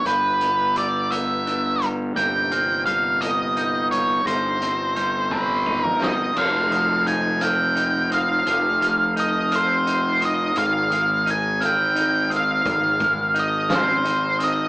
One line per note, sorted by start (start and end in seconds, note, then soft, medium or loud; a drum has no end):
0.00 2.13 D3 soft
0.00 0.76 G3 soft
0.00 6.32 G3 soft
0.00 0.41 B3 soft
0.00 2.13 B3 soft
0.00 1.11 D4 soft
0.00 2.14 G4 soft
0.00 2.13 B4 medium
0.05 2.12 G1 medium
0.05 3.56 G2 medium
0.05 0.77 B4 medium
0.05 0.76 G6 medium
0.05 closed hi-hat soft
0.41 1.11 B3 soft
0.41 closed hi-hat soft
0.76 1.82 G3 medium
0.76 1.13 D5 medium
0.76 1.46 E6 medium
0.76 closed hi-hat soft
1.11 2.17 B3 medium
1.11 1.86 E5 medium
1.11 closed hi-hat medium
1.47 2.17 D4 soft
1.47 closed hi-hat soft
1.82 2.16 G3 soft
1.82 closed hi-hat soft
2.15 4.22 G1 medium
2.15 6.32 C3 soft
2.15 2.86 G3 medium
2.15 6.32 A#3 soft
2.15 6.32 D#4 soft
2.15 4.24 A#4 medium
2.15 2.85 G5 medium
2.15 2.52 G6 medium
2.15 closed hi-hat medium
2.51 4.62 C4 soft
2.51 3.22 F6 medium
2.51 closed hi-hat soft
2.86 3.92 G3 medium
2.86 3.22 F5 medium
2.86 closed hi-hat soft
3.21 3.87 D#5 medium
3.21 3.56 D#6 medium
3.21 closed hi-hat medium
3.56 5.32 D#4 soft
3.56 4.27 G6 medium
3.56 closed hi-hat soft
3.91 4.26 G3 soft
3.91 4.27 C#5 medium
3.91 closed hi-hat soft
4.25 6.32 G1 medium
4.25 4.95 G3 medium
4.25 6.34 C5 medium
4.25 5.31 C5 medium
4.25 4.96 A#6 medium
4.25 closed hi-hat medium
4.62 5.30 C4 soft
4.62 closed hi-hat soft
4.96 6.00 G3 soft
4.96 5.66 G6 medium
4.96 closed hi-hat soft
5.31 6.36 C4 medium
5.31 5.87 A#4 medium
5.31 5.87 C5 medium
5.31 kick soft
5.66 6.37 D#4 medium
5.66 kick soft
5.84 6.03 A#4 medium
5.84 mid tom soft
6.01 6.36 G3 soft
6.01 6.39 D#5 medium
6.01 snare medium
6.33 8.42 F1 medium
6.33 14.69 C3 soft
6.33 10.51 F3 soft
6.33 6.70 F3 medium
6.33 14.69 G#3 soft
6.33 14.69 D#4 soft
6.33 8.43 F4 medium
6.33 crash medium
6.38 7.07 F5 medium
6.71 8.44 F3 medium
6.71 7.42 D#6 medium
6.71 closed hi-hat soft
7.06 7.75 D#4 soft
7.06 7.43 G#5 medium
7.06 closed hi-hat soft
7.41 8.10 C4 medium
7.41 8.09 G5 medium
7.41 8.12 F6 medium
7.41 closed hi-hat medium
7.76 9.16 D#4 soft
7.76 closed hi-hat soft
8.11 9.51 C4 soft
8.11 9.14 F5 medium
8.11 8.82 D#6 medium
8.11 closed hi-hat soft
8.46 10.52 F1 medium
8.46 8.80 F3 medium
8.46 closed hi-hat medium
8.50 10.55 G4 medium
8.81 10.56 F3 medium
8.81 9.51 F6 medium
8.81 closed hi-hat soft
9.16 9.86 D#4 medium
9.16 9.54 D#5 medium
9.16 closed hi-hat soft
9.51 10.22 C4 medium
9.51 10.25 C5 medium
9.51 10.22 F6 medium
9.51 closed hi-hat medium
9.87 11.26 D#4 soft
9.87 closed hi-hat soft
10.20 11.60 C4 medium
10.20 10.56 D#6 medium
10.20 closed hi-hat soft
10.25 10.58 D#5 medium
10.55 12.62 G#1 medium
10.55 12.65 G#2 medium
10.55 14.69 D#3 soft
10.55 14.69 G#4 medium
10.55 11.29 F5 medium
10.55 closed hi-hat medium
10.90 12.99 G#3 soft
10.90 11.60 D#6 medium
10.90 closed hi-hat soft
11.26 11.95 D#4 medium
11.26 closed hi-hat soft
11.30 11.61 G#5 medium
11.61 12.30 C4 medium
11.61 12.31 F6 medium
11.61 closed hi-hat medium
11.66 12.29 G5 medium
11.96 13.34 D#4 soft
11.96 closed hi-hat soft
12.30 13.69 C4 medium
12.30 13.00 D#6 medium
12.30 closed hi-hat soft
12.36 13.39 F5 medium
12.65 14.69 G#1 medium
12.65 14.69 G#2 medium
12.65 kick medium
12.65 closed hi-hat medium
12.99 14.69 G#3 soft
12.99 13.68 F6 medium
12.99 kick medium
12.99 closed hi-hat soft
13.34 14.04 D#4 medium
13.34 closed hi-hat soft
13.40 13.73 D#5 medium
13.69 14.39 C4 medium
13.69 14.40 F6 medium
13.69 snare medium
13.69 closed hi-hat medium
13.75 14.45 C5 medium
14.05 14.69 D#4 medium
14.05 closed hi-hat soft
14.39 14.69 C4 medium
14.39 14.69 D#6 medium
14.39 closed hi-hat soft
14.44 14.69 D#5 medium